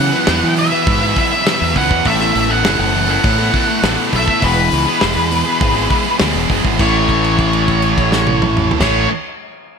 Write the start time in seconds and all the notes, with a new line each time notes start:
Already playing: E3 F#3 B3 E4 B4 F#5
0.00 E2 B2 C#3 E3
0.13 B3 E4 B4
0.27 E2 B2 E3 F#3 B3 E4 B4, snare, open hi-hat
0.41 E3 B3 E4 B4
0.57 E2 B2 E3 E5, muted overdriven electric guitar stroke, open hi-hat
0.72 B3 E4 B4
0.87 E2 G#2 B2 E3, kick, open hi-hat
1.01 B3 E4 B4
1.16 E2 B2 E3 F#3 B3 E4 B4 E5, kick, open hi-hat
1.33 muted overdriven electric guitar stroke
1.46 E2 B2 E3 F#3 B3 E4 B4, snare, open hi-hat
1.60 E2 B3 E4 B4
1.76 C#2 E2 B2 E3 F#3 B3 E4 B4 F#5, kick, open hi-hat
1.91 E2 B3 E4 B4, kick
2.05 A1 A2 E3 A3 B3 E4 A4 E5, kick, open hi-hat
2.20 muted distorted electric guitar stroke, snare
2.35 A1 A2 E3 A3, open hi-hat
2.49 B3 E4 A4 F#5
2.64 F#1 A2 E3 A3 B3 E4 A4, snare, open hi-hat
2.79 F#1 B3 E4 A4 F#5
2.94 A2 E3 A3, muted overdriven electric guitar stroke, open hi-hat
3.08 B3 E4 A4 F#5
3.23 A2 E3 A3, kick, open hi-hat
3.38 B3 E4 A4
3.54 A2 E3 A3 B3 E4 A4, kick, open hi-hat
3.70 muted overdriven electric guitar stroke
3.83 A1 A2 E3 A3 B3 E4 A4, snare, open hi-hat
3.97 B3 E4 A4
4.13 B1 A2 E3 A3 B3 E4 A4 E5, kick, open hi-hat
4.28 B3 E4 A4, kick
4.42 E1 E2 B2 E3 G#3 B3 E4 G#4 B4, kick, open hi-hat
4.56 muted distorted electric guitar stroke
4.72 C#2 E2 B2 E3, open hi-hat
4.87 B3 E4 G#4
5.01 E1 E2 B2 E3 G#3 B3 E4 G#4, snare, open hi-hat
5.15 E2 B3 E4 G#4
5.31 E2 B2 E3, muted overdriven electric guitar stroke, open hi-hat
5.45 B3 E4 G#4
5.61 G#1 E2 B2 E3, kick, open hi-hat
5.76 B3 E4 G#4
5.90 E2 B2 E3 G#3 B3 E4 G#4, kick, open hi-hat
6.06 muted overdriven electric guitar stroke
6.19 D2 E2 B2 E3 G#3 B3 E4 G#4, snare, open hi-hat
6.34 E1 B3 E4 G#4
6.49 F#1 E2 B2 E3 G#3 B3 E4 G#4, kick, open hi-hat
6.64 G#1 B3 E4 G#4, kick
6.79 A1 A2 E3 C#5, kick, crash
6.83 A3
7.09 kick, crash
7.24 crash
7.39 kick, crash
7.53 crash
7.68 kick, crash
7.82 crash
7.98 kick, crash
8.12 snare
8.27 high tom
8.42 mid tom
8.57 mid tom
8.71 floor tom
8.80 A1 A2 E3 A3 C#5, kick, snare, crash
8.84 A3